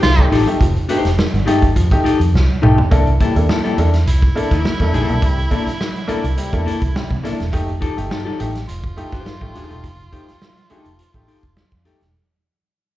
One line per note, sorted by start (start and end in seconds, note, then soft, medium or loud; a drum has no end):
0.03 0.28 C2 medium
0.03 0.26 F4 loud
0.03 snare loud
0.18 0.32 A3 medium
0.18 0.32 D#4 medium
0.18 0.32 G4 medium
0.18 kick loud
0.18 closed hi-hat soft
0.32 0.45 A1 loud
0.32 0.47 F3 medium
0.32 0.47 D#4 medium
0.32 0.47 G4 loud
0.32 0.48 A4 loud
0.32 snare soft
0.32 open hi-hat medium
0.47 0.60 A3 medium
0.47 0.60 D#4 medium
0.47 0.61 G4 medium
0.47 closed hi-hat soft
0.61 0.74 F1 loud
0.61 0.76 F3 medium
0.61 kick loud
0.61 closed hi-hat medium
0.76 0.81 D#4 soft
0.76 0.82 G4 soft
0.76 closed hi-hat soft
0.89 1.05 A3 medium
0.89 1.10 D#4 medium
0.89 1.05 D#4 medium
0.89 1.10 G4 medium
0.89 1.05 G4 medium
0.89 1.10 C5 medium
0.89 closed hi-hat medium
1.05 1.16 F1 medium
1.05 snare soft
1.05 closed hi-hat medium
1.19 snare loud
1.34 1.45 G1 loud
1.34 closed hi-hat soft
1.46 1.62 A3 medium
1.46 1.62 D#4 medium
1.46 1.62 G4 medium
1.46 1.62 G4 loud
1.46 1.62 A4 loud
1.46 closed hi-hat medium
1.62 1.74 G1 medium
1.62 kick medium
1.62 closed hi-hat medium
1.76 1.89 F2 medium
1.76 1.91 F3 medium
1.76 kick loud
1.76 closed hi-hat medium
1.91 2.04 A3 medium
1.91 2.04 D#4 medium
1.91 2.04 G4 medium
1.91 kick loud
1.91 closed hi-hat soft
2.04 2.20 D#4 medium
2.04 2.11 D#4 soft
2.04 2.20 G4 medium
2.04 2.11 G4 soft
2.04 2.20 A4 medium
2.04 muted fingered electric bass stroke soft
2.04 closed hi-hat medium
2.20 2.32 F2 loud
2.20 closed hi-hat medium
2.34 2.47 C2 medium
2.34 2.49 F3 medium
2.34 snare medium
2.62 2.76 B1 medium
2.62 2.77 A3 medium
2.62 2.77 D#4 medium
2.62 2.78 G4 medium
2.62 2.77 G4 medium
2.62 2.78 A4 medium
2.62 mid tom loud
2.78 2.84 D#4 soft
2.78 2.84 G4 soft
2.78 floor tom medium
2.91 3.16 C2 loud
2.91 3.06 A#3 medium
2.91 3.06 D4 medium
2.91 3.06 E4 medium
2.91 3.06 A4 loud
2.91 kick loud
2.91 closed hi-hat medium
3.07 closed hi-hat soft
3.20 3.35 C3 medium
3.20 3.35 G3 medium
3.20 3.36 A#3 medium
3.20 3.36 E4 medium
3.20 3.36 A4 medium
3.20 kick medium
3.20 closed hi-hat medium
3.36 3.47 D#2 medium
3.36 3.49 A#3 medium
3.36 3.49 D4 medium
3.36 3.48 E4 medium
3.36 3.48 A4 medium
3.36 closed hi-hat medium
3.49 3.61 A#3 medium
3.49 3.55 E4 soft
3.49 3.61 E4 medium
3.49 3.55 A4 soft
3.49 3.62 A4 medium
3.49 snare loud
3.64 3.78 C3 medium
3.64 3.78 G3 medium
3.64 3.78 A#3 medium
3.64 3.78 E4 medium
3.64 3.78 A4 medium
3.64 closed hi-hat soft
3.78 4.03 E2 medium
3.78 3.93 A#3 medium
3.78 3.93 D4 medium
3.78 3.93 E4 medium
3.78 3.93 A4 medium
3.78 closed hi-hat medium
3.94 snare soft
3.94 closed hi-hat medium
4.06 4.31 C2 medium
4.06 7.20 E4 medium
4.06 closed hi-hat loud
4.22 kick loud
4.22 closed hi-hat soft
4.35 4.50 A#3 medium
4.35 4.51 D4 medium
4.35 4.51 E4 medium
4.35 4.51 A4 loud
4.35 closed hi-hat medium
4.51 4.63 D#2 medium
4.51 4.71 A#3 medium
4.51 4.71 E4 medium
4.51 4.70 A#4 medium
4.51 kick loud
4.51 snare soft
4.51 closed hi-hat medium
4.65 snare loud
4.80 4.92 E2 loud
4.80 4.93 A#3 medium
4.80 4.94 D4 medium
4.80 4.94 E4 medium
4.80 4.94 A4 loud
4.80 kick medium
4.80 closed hi-hat soft
4.93 5.06 A#1 medium
4.93 5.08 C3 medium
4.93 5.08 G3 medium
4.93 5.14 A#3 medium
4.93 5.14 E4 medium
4.93 5.14 A4 loud
4.93 snare soft
4.93 closed hi-hat medium
5.08 5.20 B1 loud
5.08 5.22 A#3 medium
5.08 5.22 D4 medium
5.08 5.22 E4 medium
5.08 5.22 A4 medium
5.08 closed hi-hat soft
5.22 5.47 C2 loud
5.22 5.37 C3 medium
5.22 5.37 G3 medium
5.22 kick loud
5.22 closed hi-hat medium
5.38 5.43 E4 soft
5.38 5.43 A4 soft
5.38 closed hi-hat soft
5.51 5.66 A#3 medium
5.51 5.66 D4 medium
5.51 5.66 E4 medium
5.51 5.67 E4 medium
5.51 5.66 A4 medium
5.51 5.67 A#4 medium
5.51 kick medium
5.51 closed hi-hat medium
5.66 muted fingered electric bass stroke medium
5.66 snare soft
5.66 closed hi-hat medium
5.81 snare loud
5.96 closed hi-hat soft
6.08 6.23 A#3 loud
6.08 6.24 A#3 loud
6.08 6.23 D4 medium
6.08 6.23 E4 medium
6.08 6.24 E4 loud
6.08 6.23 A4 loud
6.08 6.24 A4 loud
6.08 muted fingered electric bass stroke soft
6.08 closed hi-hat medium
6.24 6.36 C2 medium
6.24 closed hi-hat medium
6.37 6.52 C3 medium
6.37 6.52 G3 medium
6.37 muted fingered electric bass stroke soft
6.37 closed hi-hat medium
6.53 6.65 E2 medium
6.53 6.66 A#3 medium
6.53 6.66 D4 medium
6.53 6.66 E4 medium
6.53 6.66 A4 medium
6.53 kick medium
6.53 closed hi-hat soft
6.65 6.81 A#3 medium
6.65 6.82 E4 medium
6.65 6.73 E4 soft
6.65 6.82 A4 loud
6.65 6.73 A4 soft
6.65 closed hi-hat medium
6.82 6.93 C2 medium
6.82 kick medium
6.82 closed hi-hat medium
6.96 7.10 C3 medium
6.96 7.10 G3 medium
6.96 snare loud
7.10 7.22 C3 loud
7.10 kick loud
7.10 closed hi-hat soft
7.23 7.39 A#3 medium
7.23 7.39 D4 medium
7.23 7.39 E4 medium
7.23 7.38 E4 medium
7.23 7.40 A4 medium
7.23 7.39 A4 medium
7.23 snare soft
7.23 closed hi-hat medium
7.40 7.53 E1 loud
7.40 7.45 E4 soft
7.40 7.45 A4 soft
7.40 snare soft
7.40 closed hi-hat soft
7.53 7.78 F1 loud
7.53 7.68 A3 medium
7.53 7.68 D#4 medium
7.53 7.68 G4 loud
7.53 kick loud
7.53 closed hi-hat medium
7.69 closed hi-hat soft
7.81 7.97 F3 medium
7.81 7.96 D#4 medium
7.81 7.97 G4 medium
7.81 7.97 A4 loud
7.81 kick medium
7.81 closed hi-hat medium
7.97 8.09 G1 medium
7.97 8.10 A3 medium
7.97 8.10 D#4 medium
7.97 8.10 G4 medium
7.97 closed hi-hat medium
8.10 8.22 D#4 medium
8.10 8.17 D#4 soft
8.10 8.23 G4 medium
8.10 8.17 G4 soft
8.10 8.23 A4 medium
8.10 snare loud
8.25 8.39 F3 medium
8.25 8.39 D#4 medium
8.25 8.39 G4 medium
8.25 8.39 A4 medium
8.40 8.65 A1 medium
8.40 8.55 A3 medium
8.40 8.54 D#4 medium
8.40 8.55 G4 medium
8.40 closed hi-hat medium
8.55 snare soft
8.55 closed hi-hat medium
8.68 8.94 F1 medium
8.68 11.81 F4 medium
8.68 closed hi-hat loud
8.84 kick loud
8.84 closed hi-hat soft
8.97 9.12 A3 medium
8.97 9.12 D#4 medium
8.97 9.12 G4 loud
8.97 closed hi-hat medium
9.12 9.24 G1 loud
9.12 9.32 D#4 medium
9.12 9.32 G4 medium
9.12 9.32 C5 medium
9.12 kick loud
9.12 snare soft
9.12 closed hi-hat medium
9.26 snare loud
9.41 9.53 A1 medium
9.41 9.55 A3 medium
9.41 9.55 D#4 medium
9.41 9.55 G4 medium
9.41 kick loud
9.55 9.68 D#1 loud
9.55 9.70 F3 medium
9.55 9.76 D#4 medium
9.55 9.76 G4 medium
9.55 9.76 A4 medium
9.55 snare soft
9.55 closed hi-hat medium
9.70 9.82 E1 loud
9.70 9.83 A3 medium
9.70 9.83 D#4 medium
9.70 9.83 G4 medium
9.70 closed hi-hat soft
9.84 10.09 F1 loud
9.84 9.99 F3 medium
9.84 kick loud
9.84 closed hi-hat medium
9.99 10.04 D#4 soft
9.99 10.04 G4 soft
9.99 closed hi-hat soft
10.12 10.27 A3 medium
10.12 10.28 D#4 medium
10.12 10.27 D#4 medium
10.12 10.28 G4 medium
10.12 10.28 C5 medium
10.12 kick medium
10.12 closed hi-hat medium
10.28 muted fingered electric bass stroke soft
10.28 snare soft
10.28 closed hi-hat soft
10.42 snare loud
10.57 closed hi-hat soft
10.70 10.85 A3 loud
10.70 10.91 D#4 medium
10.70 10.85 D#4 medium
10.70 10.85 G4 medium
10.70 10.91 G4 medium
10.70 10.91 A4 medium
10.70 muted fingered electric bass stroke soft
10.70 closed hi-hat medium
10.85 10.97 F1 medium
10.85 closed hi-hat medium
10.99 11.14 F3 medium
10.99 muted fingered electric bass stroke soft
10.99 closed hi-hat loud
11.14 11.26 A1 medium
11.14 11.28 A3 medium
11.14 11.27 D#4 medium
11.14 11.27 G4 medium
11.14 kick medium
11.14 closed hi-hat soft
11.28 11.43 D#4 medium
11.28 11.34 D#4 soft
11.28 11.43 G4 medium
11.28 11.34 G4 soft
11.28 11.44 A4 loud
11.28 open hi-hat medium
11.43 11.55 F1 medium
11.43 kick medium
11.43 closed hi-hat medium
11.57 11.72 F3 medium
11.57 snare loud
11.71 11.84 F2 medium
11.71 kick medium
11.71 closed hi-hat soft
11.85 12.01 A3 medium
11.85 12.01 D#4 medium
11.85 11.99 D#4 medium
11.85 12.01 G4 medium
11.85 11.99 G4 medium
11.85 12.01 A4 medium
11.85 snare soft
11.85 closed hi-hat medium
12.01 12.13 E1 medium
12.01 12.06 D#4 soft
12.01 12.06 G4 soft
12.01 snare soft
12.01 closed hi-hat soft